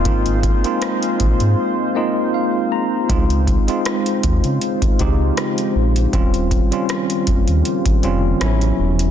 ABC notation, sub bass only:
X:1
M:4/4
L:1/16
Q:"Swing 16ths" 1/4=79
K:Ab
V:1 name="Sub bass" clef=bass
A,,,3 z3 B,,, A,, z8 | D,,3 z3 E,, D, z D,, D,,2 z2 B,,,2 | E,,,3 z3 F,,, E,, z F,,, F,,,2 =A,,,2 =E,,,2 |]